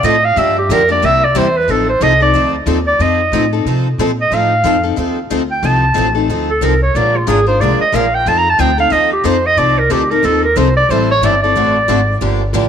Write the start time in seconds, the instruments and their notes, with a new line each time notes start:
0.03 upright bass A2, steel-string acoustic guitar F3 C4 D#4 A4, clarinet D#5
0.25 clarinet F5
0.36 upright bass G2, steel-string acoustic guitar D3 F3 A#3 D4 G4, clarinet E5
0.58 clarinet G4
0.69 upright bass F2, steel-string acoustic guitar D3 F3 A#3 D4 G4, clarinet A#4
0.89 steel-string acoustic guitar A#3 D4 G4, clarinet D5
1.02 upright bass C2, steel-string acoustic guitar C3 G3 A#3 E4 G4, clarinet E5
1.24 clarinet D5
1.35 upright bass E2, steel-string acoustic guitar C3 G3 A#3 E4 G4, clarinet C5
1.57 clarinet B4
1.68 upright bass A1, steel-string acoustic guitar F3 C4 D#4 A4, clarinet A4
1.89 clarinet C5
2.01 upright bass C2, steel-string acoustic guitar F3 C4 D#4 A4, clarinet D#5
2.20 steel-string acoustic guitar C4 D#4 A4, clarinet D5
2.34 upright bass D2, steel-string acoustic guitar F3 C4 D#4 A4
2.66 upright bass D#2, steel-string acoustic guitar F3 C4 D#4 A4
2.87 clarinet D5
2.99 upright bass F2, steel-string acoustic guitar F3 C4 D#4 A4, clarinet D#5
3.32 upright bass A2, steel-string acoustic guitar F3 C4 D#4 A4
3.53 steel-string acoustic guitar C4 D#4 A4
3.65 upright bass C3, steel-string acoustic guitar F3 C4 D#4 A4
3.98 upright bass A#2, steel-string acoustic guitar F3 C4 D#4 A4
4.21 clarinet D#5
4.30 upright bass A2, steel-string acoustic guitar F3 C4 D#4 A4, clarinet F5
4.64 upright bass F2, steel-string acoustic guitar F3 C4 D#4 A4
4.83 steel-string acoustic guitar C4 D#4 A4
4.96 upright bass D#2, steel-string acoustic guitar F3 C4 D#4 A4
5.30 upright bass D2, steel-string acoustic guitar F3 C4 D#4 A4
5.51 clarinet G5
5.63 upright bass C2, steel-string acoustic guitar F3 C4 D#4 A4, clarinet A5
5.94 upright bass A1, steel-string acoustic guitar F3 C4 D#4 A4
6.15 steel-string acoustic guitar C4 D#4 A4
6.28 upright bass D2, steel-string acoustic guitar F3 C4 D#4 A4
6.50 clarinet A4
6.61 upright bass C2, steel-string acoustic guitar F3 C4 D#4 A4, clarinet A#4
6.83 clarinet C#5
6.95 upright bass A#1, steel-string acoustic guitar D3 F3 G#3 A#3 D4 F4 G#4 A#4, clarinet D5
7.16 clarinet F4
7.27 upright bass G#1, steel-string acoustic guitar D3 F3 G#3 A#3 D4 F4 G#4 A#4, clarinet G#4
7.47 steel-string acoustic guitar D4 F4 A#4, clarinet C5
7.60 upright bass C2, steel-string acoustic guitar D3 F3 G#3 A#3 D4 F4 G#4 A#4, clarinet D5
7.80 clarinet D#5, muted upright bass stroke
7.92 upright bass A#1, steel-string acoustic guitar D3 F3 G#3 A#3 D4 F4 G#4 A#4, clarinet F5
8.15 clarinet G5
8.26 upright bass F2, steel-string acoustic guitar F3 C4 D#4 A4, clarinet A5
8.38 clarinet A#5
8.50 clarinet A5
8.59 upright bass D2, steel-string acoustic guitar F3 C4 D#4 A4, clarinet G5
8.78 steel-string acoustic guitar C4 D#4 A4, clarinet F5
8.90 upright bass D#2, steel-string acoustic guitar F3 C4 D#4 A4, clarinet D#5
9.13 clarinet G4
9.24 upright bass F2, steel-string acoustic guitar F3 C4 D#4 A4, clarinet C5
9.46 clarinet D#5
9.57 upright bass C2, steel-string acoustic guitar F3 C4 D#4 A4, clarinet D5
9.79 clarinet A#4
9.90 upright bass D2, steel-string acoustic guitar F3 C4 D#4 A4, clarinet G4
10.11 steel-string acoustic guitar C4 D#4 A4, clarinet A#4
10.23 upright bass D#2, steel-string acoustic guitar F3 C4 D#4 A4, clarinet A4
10.44 clarinet A#4
10.56 upright bass C2, steel-string acoustic guitar F3 C4 D#4 A4, clarinet C5
10.77 clarinet D5
10.89 upright bass A1, steel-string acoustic guitar E3 G3 C4 E4 A4, clarinet C5
11.11 clarinet C#5
11.21 upright bass G1, steel-string acoustic guitar E3 G3 C4 E4 A4, clarinet D5
11.42 steel-string acoustic guitar C4 E4 A4, clarinet D5
11.55 upright bass A1, steel-string acoustic guitar D3 A3 C4 F#4 A4
11.88 upright bass G#1, steel-string acoustic guitar D3 A3 C4 F#4 A4
12.21 upright bass G1, steel-string acoustic guitar D3 F3 A#3 D4 G4
12.53 upright bass A1, steel-string acoustic guitar D3 F3 A#3 D4 G4